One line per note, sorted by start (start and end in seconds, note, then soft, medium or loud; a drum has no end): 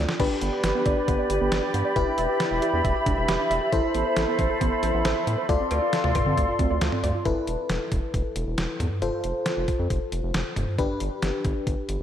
0.00 0.16 D4 medium
0.00 0.16 F4 medium
0.00 0.16 A4 medium
0.09 0.19 F4 medium
0.09 snare medium
0.20 0.28 G1 loud
0.20 1.93 D4 medium
0.20 3.69 G4 medium
0.20 1.93 G4 medium
0.20 1.94 B4 medium
0.20 1.93 B4 medium
0.20 3.69 D5 medium
0.20 0.30 D5 loud
0.20 5.45 B5 medium
0.20 kick loud
0.20 crash medium
0.31 0.41 G4 medium
0.41 0.50 G1 loud
0.41 0.52 B3 medium
0.41 closed hi-hat medium
0.53 0.63 D5 medium
0.64 0.72 G1 loud
0.64 0.74 G4 medium
0.64 snare loud
0.64 closed hi-hat medium
0.75 0.85 B3 medium
0.86 0.95 G1 loud
0.86 0.96 D5 medium
0.86 kick loud
0.86 closed hi-hat medium
0.97 1.07 G4 medium
1.08 1.17 G1 loud
1.08 1.18 B3 medium
1.08 kick medium
1.08 closed hi-hat medium
1.19 1.29 D5 medium
1.30 1.39 G1 loud
1.30 1.40 G4 medium
1.30 closed hi-hat medium
1.41 1.50 G1 loud
1.41 1.51 B3 medium
1.52 1.61 G1 loud
1.52 1.62 D5 loud
1.52 snare loud
1.52 closed hi-hat medium
1.63 1.73 G4 medium
1.74 1.83 G2 medium
1.74 1.84 B3 medium
1.74 closed hi-hat medium
1.85 1.95 D5 medium
1.96 2.05 E1 loud
1.96 3.69 E4 medium
1.96 2.06 G4 medium
1.96 3.69 G4 medium
1.96 3.69 B4 medium
1.96 5.46 E5 medium
1.96 kick loud
1.96 closed hi-hat medium
2.07 2.17 D4 medium
2.18 2.27 E1 loud
2.18 2.28 E5 medium
2.18 closed hi-hat medium
2.29 2.39 G4 medium
2.40 snare loud
2.40 closed hi-hat medium
2.51 2.60 E1 loud
2.51 2.61 E5 medium
2.62 2.72 G4 medium
2.62 closed hi-hat medium
2.73 2.82 E2 loud
2.73 2.84 D4 medium
2.84 2.93 E1 loud
2.84 2.95 E5 loud
2.84 kick medium
2.84 closed hi-hat medium
2.95 3.06 G4 medium
3.06 3.15 E1 loud
3.06 3.17 D4 medium
3.06 kick loud
3.06 closed hi-hat medium
3.17 3.26 E1 loud
3.17 3.28 E5 medium
3.28 3.37 E1 loud
3.28 3.39 G4 loud
3.28 snare loud
3.28 closed hi-hat medium
3.39 3.50 D4 medium
3.51 3.59 E1 loud
3.51 3.61 E5 medium
3.51 closed hi-hat medium
3.62 3.72 G4 medium
3.73 3.81 A1 loud
3.73 5.46 E4 medium
3.73 5.47 A4 medium
3.73 5.46 A4 medium
3.73 3.83 C5 loud
3.73 5.46 C5 medium
3.73 5.47 C5 medium
3.73 kick loud
3.73 closed hi-hat medium
3.84 3.94 A4 medium
3.94 4.03 A1 medium
3.94 4.05 B3 medium
3.94 closed hi-hat medium
4.06 4.16 C5 medium
4.16 4.25 A1 loud
4.16 4.27 A4 medium
4.16 snare loud
4.16 closed hi-hat medium
4.28 4.38 B3 medium
4.39 4.48 A1 loud
4.39 4.49 C5 medium
4.39 kick loud
4.39 closed hi-hat medium
4.50 4.60 A4 medium
4.61 4.70 A1 loud
4.61 4.71 B3 medium
4.61 kick medium
4.61 closed hi-hat medium
4.72 4.82 C5 medium
4.83 4.92 A1 loud
4.83 4.93 A4 medium
4.83 closed hi-hat medium
4.94 5.03 A1 loud
4.94 5.04 B3 medium
5.05 5.14 A1 loud
5.05 5.15 C5 medium
5.05 snare loud
5.05 closed hi-hat medium
5.16 5.26 A4 medium
5.27 5.36 A2 medium
5.27 5.37 B3 medium
5.27 closed hi-hat medium
5.38 5.48 C5 medium
5.49 5.58 D2 loud
5.49 5.59 F4 loud
5.49 7.22 F4 medium
5.49 7.22 A4 medium
5.49 7.22 D5 medium
5.49 7.24 D5 medium
5.49 7.24 C6 medium
5.49 kick loud
5.49 closed hi-hat medium
5.60 5.70 C4 medium
5.71 5.80 D2 loud
5.71 5.81 D5 medium
5.71 closed hi-hat medium
5.71 cowbell medium
5.82 5.92 F4 medium
5.93 snare loud
5.93 closed hi-hat medium
6.04 6.13 D2 loud
6.04 6.14 D5 medium
6.04 mid tom medium
6.15 6.25 F4 medium
6.15 kick loud
6.15 closed hi-hat medium
6.15 mid tom medium
6.15 cowbell medium
6.26 6.35 D3 loud
6.26 6.36 C4 medium
6.37 6.46 D2 loud
6.37 6.47 D5 loud
6.37 kick medium
6.37 closed hi-hat medium
6.48 6.59 F4 medium
6.59 6.68 D2 loud
6.59 6.70 C4 medium
6.59 kick loud
6.59 closed hi-hat medium
6.70 6.79 D2 loud
6.70 6.81 D5 medium
6.81 6.90 D2 loud
6.81 6.92 F4 medium
6.81 snare loud
6.81 closed hi-hat medium
6.92 7.03 C4 medium
6.92 mid tom medium
7.03 7.12 D2 loud
7.03 7.14 D5 medium
7.03 closed hi-hat medium
7.15 7.25 F4 medium
7.25 7.34 E1 loud
7.25 8.98 E4 medium
7.25 8.98 A4 medium
7.25 8.98 B4 medium
7.25 kick loud
7.25 closed hi-hat medium
7.47 7.56 E1 medium
7.47 closed hi-hat medium
7.69 7.78 E1 loud
7.69 snare loud
7.69 closed hi-hat medium
7.92 8.00 E1 loud
7.92 kick loud
7.92 closed hi-hat medium
8.14 8.23 E1 loud
8.14 kick medium
8.14 closed hi-hat medium
8.36 8.45 E1 loud
8.36 closed hi-hat medium
8.47 8.56 E1 medium
8.58 8.67 E1 loud
8.58 snare loud
8.58 closed hi-hat medium
8.80 8.89 E2 loud
8.80 closed hi-hat medium
8.80 mid tom medium
9.02 9.11 F1 loud
9.02 10.75 F4 medium
9.02 10.75 A4 medium
9.02 10.75 C5 medium
9.02 closed hi-hat medium
9.24 9.33 F1 medium
9.24 closed hi-hat medium
9.46 snare loud
9.46 closed hi-hat medium
9.57 9.66 F1 loud
9.68 kick medium
9.68 closed hi-hat medium
9.79 9.88 F2 medium
9.90 9.99 F1 loud
9.90 kick medium
9.90 closed hi-hat medium
10.12 10.21 F1 loud
10.12 closed hi-hat medium
10.23 10.32 F1 loud
10.34 10.43 F1 loud
10.34 snare loud
10.34 closed hi-hat medium
10.56 10.65 F1 loud
10.56 closed hi-hat medium
10.56 mid tom medium
10.78 10.87 G1 loud
10.78 12.03 D4 medium
10.78 12.03 G4 medium
10.78 12.03 B4 medium
10.78 kick loud
10.78 closed hi-hat medium
11.00 11.09 G1 medium
11.00 closed hi-hat medium
11.22 11.31 G1 loud
11.22 snare loud
11.22 closed hi-hat medium
11.45 11.53 G1 loud
11.45 kick medium
11.45 closed hi-hat medium
11.67 11.76 G1 loud
11.67 kick medium
11.67 closed hi-hat medium
11.89 11.98 G1 loud
11.89 closed hi-hat medium